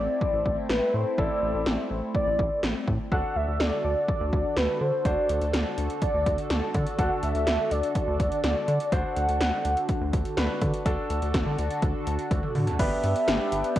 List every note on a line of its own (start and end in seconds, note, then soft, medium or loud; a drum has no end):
0.00 3.08 A3 medium
0.00 1.14 C4 medium
0.00 3.08 C4 medium
0.00 1.14 E4 medium
0.00 3.08 E4 medium
0.00 1.14 A4 medium
0.00 0.20 D5 loud
0.21 0.44 D5 loud
0.21 kick medium
0.33 0.44 A1 loud
0.46 0.56 A1 medium
0.46 0.56 D5 medium
0.46 kick medium
0.69 0.80 A1 loud
0.69 0.95 B4 medium
0.69 snare loud
0.94 1.05 A2 loud
0.94 1.20 C5 medium
1.18 1.29 A1 loud
1.18 3.08 C4 medium
1.18 3.08 E4 medium
1.18 3.08 A4 medium
1.18 1.91 D5 medium
1.18 kick loud
1.42 1.53 A1 loud
1.54 1.65 A1 medium
1.66 1.77 A1 loud
1.66 snare loud
1.91 2.01 A1 loud
2.15 2.60 D5 loud
2.15 kick medium
2.27 2.38 A1 medium
2.39 2.50 A1 loud
2.39 kick medium
2.63 2.74 A1 loud
2.63 snare loud
2.87 2.98 A2 loud
2.87 kick medium
3.11 3.22 D2 loud
3.11 10.82 D3 medium
3.11 10.82 D4 medium
3.11 5.01 D4 medium
3.11 10.82 F#4 medium
3.11 5.01 F#4 medium
3.11 10.82 A4 medium
3.11 5.01 A4 medium
3.11 3.37 F#5 loud
3.11 kick loud
3.36 3.46 D2 loud
3.36 3.62 E5 loud
3.48 3.59 D2 medium
3.60 3.71 D2 medium
3.60 3.84 D5 loud
3.60 snare loud
3.84 3.95 D2 medium
3.84 4.07 D5 medium
4.08 4.31 D5 loud
4.08 kick medium
4.21 4.31 D2 loud
4.33 4.43 D2 loud
4.33 4.58 D5 medium
4.33 kick medium
4.57 4.68 D2 loud
4.57 4.82 B4 medium
4.57 snare loud
4.81 4.92 D3 loud
4.81 5.07 C5 medium
5.05 5.16 D2 loud
5.05 6.95 D4 medium
5.05 6.95 F#4 medium
5.05 6.95 C5 medium
5.05 5.78 D5 medium
5.05 kick loud
5.05 closed hi-hat medium
5.29 5.40 D2 loud
5.29 closed hi-hat medium
5.41 5.52 D2 medium
5.41 closed hi-hat medium
5.53 5.64 D2 medium
5.53 snare loud
5.53 closed hi-hat medium
5.78 5.88 D2 loud
5.78 closed hi-hat medium
5.90 closed hi-hat medium
6.02 6.47 D5 loud
6.02 kick medium
6.02 closed hi-hat medium
6.14 6.25 D2 medium
6.26 6.37 D2 loud
6.26 kick medium
6.26 closed hi-hat medium
6.38 closed hi-hat soft
6.50 6.61 D2 loud
6.50 snare loud
6.50 closed hi-hat medium
6.74 6.85 D3 loud
6.74 kick medium
6.74 closed hi-hat medium
6.87 closed hi-hat medium
6.99 7.09 D2 loud
6.99 8.88 D4 medium
6.99 8.88 F#4 medium
6.99 8.88 A4 medium
6.99 7.10 F#5 loud
6.99 kick loud
6.99 closed hi-hat medium
7.23 7.34 D2 loud
7.23 7.73 E5 loud
7.23 closed hi-hat medium
7.35 7.46 D2 loud
7.35 closed hi-hat soft
7.47 7.58 D2 loud
7.47 snare loud
7.47 closed hi-hat medium
7.71 7.82 D2 medium
7.71 7.95 D5 medium
7.71 closed hi-hat medium
7.84 closed hi-hat medium
7.95 8.40 D5 medium
7.95 kick medium
7.95 closed hi-hat medium
8.08 8.18 D2 loud
8.20 8.30 D2 loud
8.20 kick medium
8.20 closed hi-hat medium
8.32 closed hi-hat medium
8.44 8.55 D2 loud
8.44 8.94 D5 medium
8.44 snare loud
8.44 closed hi-hat medium
8.68 8.79 D3 loud
8.68 closed hi-hat medium
8.80 closed hi-hat medium
8.92 9.03 D2 loud
8.92 10.35 D4 medium
8.92 10.35 F#4 medium
8.92 10.35 C5 medium
8.92 10.37 F#5 loud
8.92 kick loud
8.92 closed hi-hat medium
9.16 9.27 D2 loud
9.16 closed hi-hat medium
9.29 9.39 D2 medium
9.29 closed hi-hat medium
9.41 9.51 D2 loud
9.41 snare loud
9.41 closed hi-hat medium
9.65 9.76 D2 loud
9.65 closed hi-hat medium
9.77 closed hi-hat medium
9.89 kick medium
9.89 closed hi-hat medium
10.01 10.12 D2 loud
10.13 10.24 D2 medium
10.13 kick medium
10.13 closed hi-hat medium
10.25 closed hi-hat soft
10.37 10.48 D2 loud
10.37 10.84 D4 medium
10.37 10.84 F#4 medium
10.37 10.86 B4 medium
10.37 snare loud
10.37 closed hi-hat medium
10.62 10.72 D3 loud
10.62 kick medium
10.62 closed hi-hat medium
10.74 closed hi-hat medium
10.86 10.97 D2 loud
10.86 12.77 D3 medium
10.86 12.77 D4 medium
10.86 12.76 D4 medium
10.86 12.77 F#4 medium
10.86 12.76 F#4 medium
10.86 12.77 A4 medium
10.86 12.75 A4 medium
10.86 kick loud
10.86 closed hi-hat medium
11.10 11.21 D2 medium
11.10 closed hi-hat medium
11.22 11.33 D2 medium
11.22 closed hi-hat medium
11.34 11.45 D2 loud
11.34 kick loud
11.34 snare loud
11.34 closed hi-hat medium
11.46 11.57 D3 loud
11.58 11.69 D2 loud
11.58 closed hi-hat medium
11.71 closed hi-hat medium
11.82 11.93 D2 loud
11.82 kick loud
11.82 closed hi-hat medium
12.07 12.18 D2 loud
12.07 closed hi-hat medium
12.19 closed hi-hat soft
12.31 12.42 D2 loud
12.31 kick loud
12.31 closed hi-hat medium
12.31 high tom medium
12.43 mid tom medium
12.55 12.66 D3 loud
12.55 mid tom medium
12.55 open hi-hat medium
12.67 closed hi-hat medium
12.67 floor tom medium
12.79 12.90 G1 loud
12.79 13.79 B3 medium
12.79 13.79 D4 medium
12.79 13.79 G4 medium
12.79 13.79 G4 loud
12.79 13.79 B4 medium
12.79 13.78 E5 loud
12.79 kick loud
12.79 closed hi-hat medium
12.79 crash loud
13.04 13.14 G2 loud
13.04 closed hi-hat medium
13.16 closed hi-hat medium
13.28 13.38 G1 loud
13.28 snare loud
13.28 closed hi-hat medium
13.52 13.63 G1 loud
13.52 closed hi-hat medium
13.64 closed hi-hat medium
13.76 13.79 G1 loud
13.76 13.79 D5 loud
13.76 kick medium
13.76 closed hi-hat medium